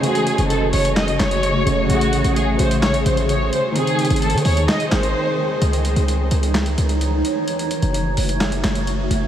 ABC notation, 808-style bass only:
X:1
M:4/4
L:1/16
Q:1/4=129
K:C#m
V:1 name="808-style bass" clef=bass
z3 F,,,3 F,,,4 F,,,4 F,,,2 | A,,,3 A,,,3 A,,,4 A,,,4 z2 | z3 G,,,2 D, D,,2 z2 G,,,2 z4 | C,,3 C,,3 C,,4 C,,4 z2 |
z3 F,,,3 F,,,4 F,,,4 F,,,2 |]